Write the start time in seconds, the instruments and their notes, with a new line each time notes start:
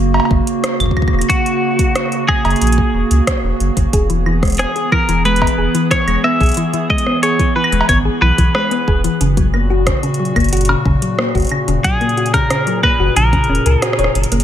Already playing: sub bass F#1, ambient pad C#3 A#3 F#4
0.14 cowbell
0.20 cowbell
0.25 cowbell
0.31 sub bass F#1, kick
0.47 closed hi-hat
0.64 cross-stick, closed hi-hat
0.80 sub bass F#1, kick, closed hi-hat, claves
0.86 kick
0.91 kick
0.97 kick, claves
1.02 kick
1.08 kick, claves
1.13 sub bass E1
1.19 closed hi-hat, claves
1.30 clean electric guitar F#4, kick, closed hi-hat
1.46 closed hi-hat
1.79 kick, closed hi-hat
1.96 cross-stick, closed hi-hat
2.12 closed hi-hat
2.28 clean electric guitar G#4, kick, claves
2.45 sub bass F#1, closed hi-hat, cowbell
2.50 closed hi-hat
2.56 closed hi-hat
2.61 sub bass A#1, closed hi-hat
2.67 closed hi-hat
2.72 closed hi-hat
2.78 kick
2.94 sub bass E1
3.11 sub bass C#2, closed hi-hat
3.27 kick, cross-stick, closed hi-hat
3.44 sub bass E1
3.60 sub bass F#1, closed hi-hat
3.77 sub bass F#1, kick, closed hi-hat
3.93 sub bass E1, ambient pad E3 B3 G#4, synth arpeggio sound G#4, kick, closed hi-hat
4.10 synth arpeggio sound E3, closed hi-hat
4.26 synth arpeggio sound E3, claves
4.43 synth arpeggio sound G#3, kick, cross-stick, closed hi-hat
4.45 closed hi-hat
4.48 closed hi-hat
4.50 closed hi-hat
4.52 closed hi-hat
4.55 closed hi-hat
4.57 synth arpeggio sound B3, cross-stick, closed hi-hat
4.59 clean electric guitar G#4, closed hi-hat
4.76 synth arpeggio sound G#4, closed hi-hat
4.92 synth arpeggio sound E3, clean electric guitar A#4, kick, claves
5.09 sub bass E1, synth arpeggio sound E3, closed hi-hat
5.25 synth arpeggio sound G#3, clean electric guitar B4, closed hi-hat
5.36 closed hi-hat
5.42 synth arpeggio sound B3, kick, cowbell
5.47 closed hi-hat
5.58 sub bass E1, synth arpeggio sound G#4
5.75 synth arpeggio sound E3, closed hi-hat
5.91 synth arpeggio sound E3, clean electric guitar C#5, kick, cross-stick, closed hi-hat
6.08 sub bass E1, synth arpeggio sound G#3, closed hi-hat, claves
6.24 synth arpeggio sound B3, clean electric guitar E5, claves
6.41 sub bass B1, synth arpeggio sound G#4, kick, closed hi-hat
6.43 closed hi-hat
6.46 closed hi-hat
6.49 closed hi-hat
6.52 closed hi-hat
6.54 closed hi-hat
6.57 synth arpeggio sound E3, closed hi-hat
6.73 synth arpeggio sound E3, closed hi-hat
6.90 synth arpeggio sound G#3, clean electric guitar D#5, kick
6.98 closed hi-hat
7.07 synth arpeggio sound B3, cross-stick
7.23 synth arpeggio sound G#4, clean electric guitar C#5, closed hi-hat
7.39 synth arpeggio sound E3, kick, closed hi-hat
7.56 synth arpeggio sound E3, clean electric guitar B4
7.64 claves
7.72 sub bass E1, synth arpeggio sound G#3, closed hi-hat
7.81 cowbell
7.89 sub bass G#1, synth arpeggio sound B3, clean electric guitar C#5, kick, closed hi-hat
8.05 synth arpeggio sound G#4
8.22 sub bass B1, synth arpeggio sound E3, clean electric guitar B4
8.38 sub bass B1, synth arpeggio sound E3, kick, closed hi-hat
8.55 synth arpeggio sound G#3, clean electric guitar B4, cross-stick
8.71 synth arpeggio sound B3, closed hi-hat
8.88 sub bass E1, synth arpeggio sound G#4, kick
9.04 synth arpeggio sound E3, closed hi-hat
9.21 sub bass F#1, ambient pad A#2 C#3 F#4, synth arpeggio sound C#3, closed hi-hat
9.37 synth arpeggio sound F#3, kick, closed hi-hat
9.54 synth arpeggio sound A#3, claves
9.70 synth arpeggio sound F#4
9.87 synth arpeggio sound C#3, kick, cross-stick, closed hi-hat
10.03 synth arpeggio sound C#3, closed hi-hat
10.14 closed hi-hat
10.20 synth arpeggio sound F#3
10.25 closed hi-hat
10.36 sub bass F#1, synth arpeggio sound A#3, kick, closed hi-hat, claves
10.40 closed hi-hat
10.44 closed hi-hat
10.49 closed hi-hat
10.53 synth arpeggio sound F#4, closed hi-hat
10.57 closed hi-hat
10.61 closed hi-hat
10.65 closed hi-hat
10.69 synth arpeggio sound C#3, cowbell
10.86 sub bass F#1, synth arpeggio sound C#3, kick
11.02 synth arpeggio sound F#3, closed hi-hat
11.19 synth arpeggio sound A#3, cross-stick
11.35 sub bass F#1, synth arpeggio sound F#4, kick, closed hi-hat
11.37 closed hi-hat
11.40 closed hi-hat
11.42 closed hi-hat
11.45 closed hi-hat
11.47 closed hi-hat
11.49 synth arpeggio sound C#3, closed hi-hat, claves
11.68 sub bass E1, synth arpeggio sound C#3, closed hi-hat
11.84 synth arpeggio sound F#3, clean electric guitar G#4, ambient pad G#4, kick, closed hi-hat
12.01 synth arpeggio sound A#3, closed hi-hat
12.09 closed hi-hat
12.17 synth arpeggio sound F#4, closed hi-hat
12.26 closed hi-hat
12.34 synth arpeggio sound C#3, clean electric guitar A#4, kick, cross-stick, closed hi-hat
12.50 synth arpeggio sound C#3, cross-stick, closed hi-hat
12.67 synth arpeggio sound F#3, closed hi-hat
12.83 synth arpeggio sound A#3, clean electric guitar B4, kick, claves
13.00 sub bass F#1, synth arpeggio sound F#4
13.16 sub bass A#1, synth arpeggio sound C#3, clean electric guitar A#4, closed hi-hat
13.33 synth arpeggio sound C#3, kick, closed hi-hat
13.44 closed hi-hat
13.49 sub bass E1, synth arpeggio sound C#4
13.55 closed hi-hat
13.66 sub bass C#2, synth arpeggio sound A#4, closed hi-hat
13.82 synth arpeggio sound F#4, clean electric guitar G#4, cross-stick, closed hi-hat
13.93 cross-stick
13.99 sub bass E1, synth arpeggio sound C#5, closed hi-hat
14.04 cross-stick
14.15 sub bass F#1, closed hi-hat
14.23 closed hi-hat
14.32 sub bass F#1, synth arpeggio sound A#3, closed hi-hat
14.40 closed hi-hat